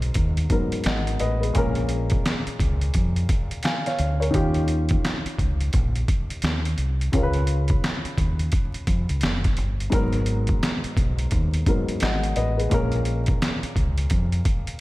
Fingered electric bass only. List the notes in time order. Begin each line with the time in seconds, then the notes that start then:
Already playing: B1
0.15 D#2
0.86 G#1
1.20 A1
1.55 A#1
2.47 muted fingered electric bass stroke
2.59 C#2
2.95 F2
3.99 D2
4.34 D#2
5.26 muted fingered electric bass stroke
5.38 C#2
5.74 A#1
6.43 D#2
6.78 C2
7.13 C#2
8.05 muted fingered electric bass stroke
8.17 D#2
8.87 F2
9.10 C#2
9.23 F#1
9.58 G1
9.92 G#1
10.84 muted fingered electric bass stroke
10.97 B1
11.32 D#2
12.02 G#1
12.37 A1
12.72 A#1
13.63 muted fingered electric bass stroke
13.76 C#2
14.11 F2